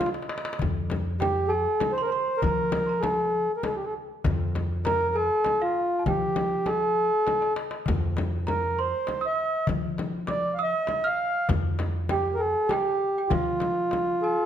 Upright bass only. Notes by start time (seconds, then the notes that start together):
0.62 F2
2.44 F3
4.26 F2
6.06 F3
7.89 F2
9.69 F3
11.49 F2
13.31 F3